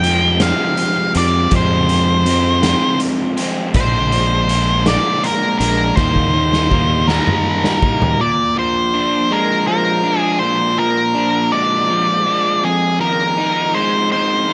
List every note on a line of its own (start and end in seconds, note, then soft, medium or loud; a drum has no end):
0.00 0.43 F2 medium
0.00 0.51 F2 medium
0.00 0.41 C3 medium
0.00 0.42 G5 medium
0.00 closed hi-hat medium
0.05 0.41 F3 medium
0.05 0.40 G#3 medium
0.05 0.38 C4 medium
0.40 1.49 F2 medium
0.40 1.50 C3 medium
0.40 1.17 F3 medium
0.40 1.16 G#3 medium
0.40 1.13 C4 medium
0.40 1.12 F5 medium
0.40 snare medium
0.40 closed hi-hat medium
0.77 closed hi-hat medium
1.14 1.46 F2 medium
1.14 1.52 F3 soft
1.14 1.53 G#3 medium
1.14 1.53 C4 medium
1.14 1.51 D5 medium
1.14 closed hi-hat medium
1.51 2.26 F2 medium
1.51 2.74 F2 medium
1.51 2.24 C3 medium
1.51 1.91 F3 medium
1.51 1.90 G#3 medium
1.51 1.87 C4 medium
1.51 kick loud
1.51 closed hi-hat medium
1.56 2.99 C5 medium
1.88 2.26 F3 medium
1.88 2.27 G#3 medium
1.88 2.27 C4 medium
1.88 closed hi-hat medium
2.25 2.63 C3 medium
2.25 2.62 F3 medium
2.25 2.61 G#3 medium
2.25 2.60 C4 medium
2.25 closed hi-hat medium
2.62 3.73 F2 medium
2.62 3.73 C3 medium
2.62 3.39 F3 medium
2.62 3.38 G#3 medium
2.62 3.36 C4 medium
2.62 snare medium
2.62 closed hi-hat medium
3.00 closed hi-hat medium
3.37 3.74 F3 medium
3.37 3.73 G#3 medium
3.37 3.72 C4 medium
3.37 closed hi-hat medium
3.73 4.96 A#1 medium
3.73 4.47 A#2 medium
3.73 4.14 F3 medium
3.73 4.12 G#3 medium
3.73 4.11 D4 loud
3.73 4.87 C5 medium
3.73 kick loud
3.73 closed hi-hat medium
4.12 4.48 F3 medium
4.12 4.49 G#3 medium
4.12 4.50 D4 medium
4.12 closed hi-hat medium
4.48 4.88 A#2 medium
4.48 4.87 F3 medium
4.48 4.86 G#3 medium
4.48 4.85 D4 medium
4.48 closed hi-hat medium
4.86 5.96 A#2 medium
4.86 5.62 F3 medium
4.86 5.60 G#3 medium
4.86 5.59 D4 medium
4.86 5.25 D5 loud
4.86 snare loud
4.86 closed hi-hat medium
5.23 5.57 A#4 medium
5.23 closed hi-hat soft
5.59 5.91 A#1 medium
5.59 5.96 G#3 medium
5.59 5.95 D4 medium
5.59 5.94 A#4 medium
5.59 closed hi-hat medium
5.63 5.97 F3 medium
5.96 7.19 D#2 medium
5.96 6.70 D#3 medium
5.96 6.35 G3 medium
5.96 6.34 A#3 medium
5.96 6.32 D#4 loud
5.96 7.78 C5 medium
5.96 kick loud
5.96 snare medium
6.16 kick soft
6.33 6.72 G3 soft
6.33 6.72 A#3 medium
6.33 6.73 D#4 medium
6.53 snare soft
6.71 7.09 D#3 medium
6.71 7.08 G3 medium
6.71 7.08 A#3 medium
6.71 7.07 D#4 medium
6.71 kick medium
7.08 8.19 D#3 medium
7.08 7.84 G3 medium
7.08 7.83 A#3 medium
7.08 7.81 D#4 medium
7.08 8.23 A#4 medium
7.08 snare medium
7.27 mid tom medium
7.64 snare medium
7.82 8.19 G3 medium
7.82 8.18 A#3 medium
7.82 8.17 D#4 medium
7.82 kick medium
8.02 floor tom medium
8.20 10.05 A#2 medium
8.20 8.58 D5 medium
8.57 9.67 F3 medium
8.57 9.34 C5 medium
8.94 10.03 D4 medium
9.31 11.17 G#3 medium
9.31 9.66 A#4 medium
9.67 10.78 F3 medium
9.67 10.19 A#4 medium
10.04 11.13 D4 medium
10.19 10.38 G#4 medium
10.39 12.26 A#2 medium
10.39 10.79 C5 medium
10.78 11.89 F3 medium
10.78 11.55 A#4 medium
11.14 12.25 D4 medium
11.52 13.74 G#3 medium
11.52 12.67 D5 loud
11.90 12.99 F3 medium
12.26 12.63 D4 medium
12.64 14.48 F2 medium
12.64 13.00 G#4 medium
13.00 14.10 D#3 medium
13.00 13.77 A#4 medium
13.38 14.47 D#4 medium
13.74 14.53 G#3 medium
13.74 14.09 C5 medium
14.12 14.53 D#3 medium
14.12 14.53 C5 medium
14.48 14.53 D#4 medium